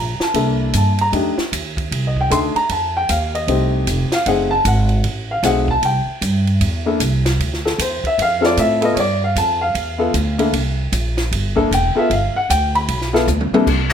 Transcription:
Already playing: upright bass A#1, grand piano A#5
0.19 grand piano A5, muted upright bass stroke, snare
0.34 upright bass C2, grand piano A#3 D4 E4 A4, kick, ride
0.73 upright bass G2, grand piano A5, kick, hi-hat pedal, ride
0.98 grand piano A#5, ride
1.12 upright bass F2, grand piano A3 D4 D#4 G4, kick, ride
1.37 muted upright bass stroke, snare
1.52 upright bass D#2, kick, hi-hat pedal, ride
1.77 kick, ride
1.91 upright bass C2, kick, ride
2.07 grand piano D#5
2.16 kick
2.21 grand piano G5
2.30 upright bass D2, grand piano A3 D4 D#4 A4 C6, kick, hi-hat pedal, ride
2.55 grand piano A#5, muted upright bass stroke, ride
2.69 upright bass F2, grand piano A5, kick, ride
2.97 grand piano G5
3.09 upright bass D#2, grand piano F5, kick, hi-hat pedal, ride
3.35 grand piano D#5, ride
3.47 upright bass C2, grand piano A3 C4 D#4 G4, kick, ride
3.87 upright bass F1, kick, hi-hat pedal, ride
4.11 grand piano F5, muted upright bass stroke, snare, ride
4.26 upright bass F#1, grand piano A3 C4 D#4 G#4 F#5, kick, ride
4.51 grand piano A5
4.65 upright bass G#1, grand piano F#5, kick, hi-hat pedal, ride
4.89 ride
5.04 upright bass A1, kick, ride
5.31 grand piano F5
5.43 upright bass B1, grand piano A3 C4 D#4 G#4 F#5, kick, snare, hi-hat pedal, ride
5.68 grand piano A5, kick
5.82 upright bass C2, grand piano G5, kick, ride
6.06 muted upright bass stroke
6.21 upright bass G2, kick, hi-hat pedal, ride
6.47 ride
6.61 upright bass E2, kick, ride
6.86 grand piano A#3 D4 E4 A4
7.00 upright bass C2, kick, hi-hat pedal, ride
7.26 snare, ride
7.39 upright bass D2, kick, ride
7.54 snare
7.65 grand piano A4, snare
7.78 upright bass E2, grand piano C5, kick, hi-hat pedal, ride
8.04 grand piano E5, muted upright bass stroke, kick, ride
8.18 upright bass F2, grand piano F5, kick, ride
8.41 grand piano C4 E4 F4 A4, snare
8.46 grand piano D5
8.57 upright bass A2, grand piano E5, kick, hi-hat pedal, ride
8.81 grand piano B3 E4 F4 A4 D#5, ride
8.94 upright bass G2, grand piano C#5, kick, ride
9.00 grand piano D5
9.24 grand piano F5
9.36 upright bass F2, grand piano A5, kick, hi-hat pedal, ride
9.61 grand piano F5
9.75 upright bass E2, kick, ride
9.98 grand piano B3 E4 F4 A4
10.14 upright bass D2, kick, hi-hat pedal, ride
10.38 grand piano A#3 D4 E4 A4, ride
10.53 upright bass C2, kick, ride
10.92 upright bass A#1, kick, hi-hat pedal, ride
11.17 snare, ride
11.31 upright bass G1, kick, ride
11.56 grand piano A#3 D4 E4 A4, kick
11.71 upright bass E1, grand piano G5, kick, hi-hat pedal, ride
11.95 grand piano B3 E4 F4 A4 E5, muted upright bass stroke
12.10 upright bass G1, grand piano F5, kick, ride
12.35 grand piano F#5, muted upright bass stroke
12.49 upright bass D2, grand piano G5, kick, hi-hat pedal, ride
12.75 grand piano B5, ride
12.88 upright bass B1, kick, ride
13.02 snare
13.13 grand piano B3 E4 F4 A4, snare
13.27 upright bass D2, hi-hat pedal, high tom
13.41 mid tom
13.52 grand piano C3 A#3 D4 E4 A4, muted upright bass stroke, mid tom
13.67 upright bass C2, kick, crash

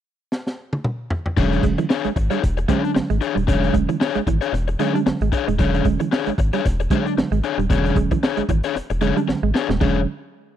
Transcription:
0.32 snare
0.47 snare
0.73 high tom
0.84 mid tom
1.10 floor tom
1.26 floor tom
1.36 analog synth bass E1, tine electric piano D3 F#3 G#3 C#4, overdriven electric guitar D4 G#4 C#5, kick, crash
1.52 muted clean electric guitar stroke, closed hi-hat
1.63 analog synth bass E1, clean electric guitar G#3, kick, closed hi-hat
1.78 clean electric guitar E3, muted overdriven electric guitar stroke, closed hi-hat
1.89 overdriven electric guitar D4 G#4 C#5, snare
2.04 analog synth bass G#1, clean electric guitar G#3, closed hi-hat
2.16 analog synth bass G#1, muted clean electric guitar stroke, muted overdriven electric guitar stroke, kick, closed hi-hat
2.30 clean electric guitar G3, overdriven electric guitar D4 G#4 C#5, closed hi-hat
2.42 analog synth bass E1, muted overdriven electric guitar stroke, kick, closed hi-hat
2.57 muted overdriven electric guitar stroke, closed hi-hat
2.68 tine electric piano D3 F#3 G#3 C#4, clean electric guitar G#3, overdriven electric guitar D4 G#4 C#5, kick, closed hi-hat
2.83 muted overdriven electric guitar stroke, closed hi-hat
2.95 analog synth bass G#1, muted overdriven electric guitar stroke, snare
3.10 analog synth bass G#1, clean electric guitar G#3, closed hi-hat
3.21 overdriven electric guitar D4 G#4 C#5, muted clean electric guitar stroke, closed hi-hat
3.35 analog synth bass D#1, clean electric guitar G3, muted overdriven electric guitar stroke, closed hi-hat
3.47 analog synth bass E1, tine electric piano D3 F#3 G#3 C#4, overdriven electric guitar D4 G#4 C#5, kick, closed hi-hat
3.63 muted clean electric guitar stroke, closed hi-hat
3.74 analog synth bass E1, clean electric guitar G#3, kick, closed hi-hat
3.89 clean electric guitar E3, muted overdriven electric guitar stroke, closed hi-hat
4.00 overdriven electric guitar D4 G#4 C#5, muted clean electric guitar stroke, snare
4.15 analog synth bass G#1, clean electric guitar G#3, closed hi-hat
4.27 analog synth bass G#1, clean electric guitar E3, muted overdriven electric guitar stroke, kick, closed hi-hat
4.41 overdriven electric guitar D4 G#4 C#5, closed hi-hat
4.53 analog synth bass E1, muted overdriven electric guitar stroke, muted clean electric guitar stroke, snare, closed hi-hat
4.68 muted overdriven electric guitar stroke, closed hi-hat
4.79 tine electric piano D3 F#3 G#3 C#4, clean electric guitar G#3, overdriven electric guitar D4 G#4 C#5, closed hi-hat
4.94 clean electric guitar G3, muted overdriven electric guitar stroke, closed hi-hat
5.06 analog synth bass G#1, muted overdriven electric guitar stroke, snare
5.21 analog synth bass G#1, clean electric guitar G#3, closed hi-hat
5.32 overdriven electric guitar D4 G#4 C#5, muted clean electric guitar stroke, kick, closed hi-hat
5.47 analog synth bass D#1, clean electric guitar G#3, muted overdriven electric guitar stroke, closed hi-hat
5.58 analog synth bass E1, tine electric piano D3 F#3 G#3 C#4, overdriven electric guitar D4 G#4 C#5, kick, closed hi-hat
5.74 muted clean electric guitar stroke, closed hi-hat
5.85 analog synth bass E1, clean electric guitar G#3, kick, closed hi-hat
6.00 clean electric guitar E3, muted overdriven electric guitar stroke, closed hi-hat
6.12 overdriven electric guitar D4 G#4 C#5, snare
6.26 analog synth bass G#1, clean electric guitar G#3, closed hi-hat
6.38 analog synth bass G#1, muted clean electric guitar stroke, muted overdriven electric guitar stroke, kick, closed hi-hat
6.53 clean electric guitar G3, overdriven electric guitar D4 G#4 C#5, closed hi-hat
6.65 analog synth bass E1, muted overdriven electric guitar stroke, kick, snare, closed hi-hat
6.80 muted overdriven electric guitar stroke, closed hi-hat
6.90 tine electric piano D3 F#3 G#3 D4, clean electric guitar G#3, overdriven electric guitar D4 G#4 C#5, kick, closed hi-hat
7.06 muted overdriven electric guitar stroke, closed hi-hat
7.17 analog synth bass G#1, muted overdriven electric guitar stroke, snare
7.31 analog synth bass G#1, clean electric guitar G#3, closed hi-hat
7.43 overdriven electric guitar D4 G#4 C#5, muted clean electric guitar stroke, closed hi-hat
7.58 analog synth bass D#1, clean electric guitar G3, muted overdriven electric guitar stroke, closed hi-hat
7.69 analog synth bass E1, tine electric piano D3 F#3 G#3 B3, overdriven electric guitar D4 G#4 C#5, kick, closed hi-hat
7.77 tine electric piano C#4
7.85 muted clean electric guitar stroke, closed hi-hat
7.96 analog synth bass E1, clean electric guitar G#3, kick, closed hi-hat
8.11 clean electric guitar E3, muted overdriven electric guitar stroke, kick, closed hi-hat
8.23 overdriven electric guitar D4 G#4 C#5, muted clean electric guitar stroke, snare
8.37 analog synth bass G#1, clean electric guitar G#3, closed hi-hat
8.49 analog synth bass G#1, clean electric guitar E3, muted overdriven electric guitar stroke, kick, closed hi-hat
8.63 overdriven electric guitar D4 G#4 C#5, closed hi-hat
8.75 analog synth bass E1, muted clean electric guitar stroke, muted overdriven electric guitar stroke, snare, closed hi-hat
8.90 analog synth bass E1, muted overdriven electric guitar stroke, closed hi-hat
9.01 tine electric piano D3 F#3 G#3 C#4, clean electric guitar G#3, overdriven electric guitar D4 G#4 C#5, closed hi-hat
9.16 clean electric guitar G3, muted overdriven electric guitar stroke, closed hi-hat
9.28 analog synth bass G#1, muted overdriven electric guitar stroke, snare
9.42 analog synth bass G#1, clean electric guitar G#3
9.54 overdriven electric guitar D4 G#4 C#5, muted clean electric guitar stroke, snare
9.69 analog synth bass D#1, clean electric guitar G#3, muted overdriven electric guitar stroke, snare
9.81 analog synth bass E1, tine electric piano D3 F#3 G#3 C#4, clean electric guitar G#3, overdriven electric guitar D4 G#4 C#5, kick, crash

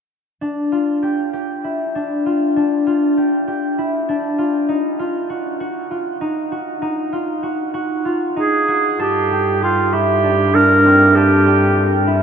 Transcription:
0.41 harp D4
0.72 harp F4
1.03 harp G4
1.33 harp G4
1.64 harp E4
1.95 harp D4
2.26 harp F4
2.56 harp D4
2.87 harp F4
3.17 harp G4
3.48 harp G4
3.78 harp E4
4.09 harp D4
4.38 harp F4
4.69 harp D#4
4.99 harp F4
5.30 harp F#4
5.60 harp F#4
5.91 harp F4
6.21 harp D#4
6.52 harp F#4
6.82 harp D#4
7.13 harp F4
7.43 harp F#4
7.74 harp F#4
8.05 harp F4
8.36 harp D#4, clarinet G#4
8.68 harp F#4
9.00 cello G2, clarinet G4, harp A4
9.31 harp G4
9.62 clarinet F4, harp G4
9.93 harp E4, clarinet G4
10.24 harp D4
10.54 harp D4, clarinet A#4
10.85 harp C4
11.15 clarinet G4, harp A4
11.46 harp G4
11.77 harp G4
12.07 harp E4

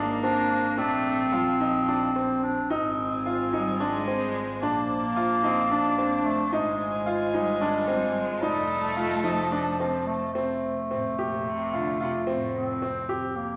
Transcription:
Already playing: double bass G#1, cello A#3, grand piano D4
0.23 grand piano C4, clarinet D4
0.77 double bass A#1, cello A3, clarinet C4, grand piano D4
1.33 cello F3, grand piano F4
1.61 grand piano D#4
1.88 grand piano D4
2.16 grand piano C4
2.43 clarinet D4
2.70 double bass G#1, clarinet C4, grand piano D#4, string section F4 C5 G#5
3.26 grand piano F4
3.53 cello G3, grand piano D#4
3.80 cello G#3, grand piano D4
4.08 grand piano C4
4.61 double bass A#1, clarinet A#3, grand piano D4, string section D4 A5
5.16 grand piano F4
5.43 cello C4, grand piano D#4
5.71 cello D4, grand piano D4
5.98 grand piano C4
6.23 clarinet A3
6.52 double bass G#1, clarinet G#3, grand piano D#4, string section F4 G#5
7.06 grand piano F4
7.34 cello G3, grand piano D#4
7.61 grand piano D4
7.88 grand piano C4
8.18 cello G#3
8.42 double bass F1, clarinet G3, cello A3, grand piano D#4, string section D#5 A5
8.96 grand piano F4
9.23 clarinet F3, grand piano D#4
9.52 grand piano D4
9.80 grand piano C4
10.07 clarinet A3
10.33 double bass F1, clarinet A3, grand piano C4
10.91 cello A2, grand piano C4
11.19 cello A#2, grand piano G4
11.49 cello C3
11.73 cello D3, grand piano F4
12.00 cello C3, grand piano F4
12.27 cello A2, grand piano C4
12.55 clarinet C4
12.82 grand piano C4
13.09 grand piano G4
13.36 clarinet A#3

